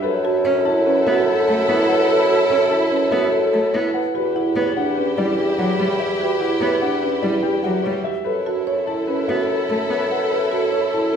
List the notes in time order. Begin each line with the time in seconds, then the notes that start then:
0.02 F#2 E4 A4 B4
0.24 F#4 A5
0.45 C#4 C#5
0.65 E4 A5
0.86 C#4 B4
1.07 B3 F#4 E5
1.28 A4
1.47 A3 A4 A5
1.68 B3 E4 C#5
1.88 B4 F#5
2.10 A4 B4
2.30 F#4 A5
2.50 C#4 C#5
2.71 E4 A5
2.91 C#4 B4
3.12 B3 F#4 E5
3.32 A4
3.53 A3 A4 A5
3.73 B3 E4 C#5
3.94 B4 F#5
4.15 E2 E4 F#4 G4 B4
4.35 E4 F#5
4.56 B3 B4 C#5
4.77 D4 F#5
4.98 C#4 B4
5.18 G3 E4 D5
5.38 G4
5.58 F#3 F#4 F#5
5.79 G3 C#5
6.00 G4 E5
6.21 F#4 B4
6.40 E4 F#5
6.61 B3 B4 C#5
6.82 D4 F#5
7.02 C#4 B4
7.22 G3 E4 D5
7.43 G4
7.63 F#3 F#4 F#5
7.83 G3 C#5
8.04 G4 E5
8.24 F#2 E4 A4 B4
8.46 F#4 A5
8.67 C#5
8.87 E4 A5
9.07 C#4 B4
9.28 B3 F#4 E5
9.49 A4
9.70 A3 A4 A5
9.90 B3 C#5
10.11 B4 F#5
10.32 A4 B4
10.52 F#4 A5
10.72 C#5
10.93 E4 A5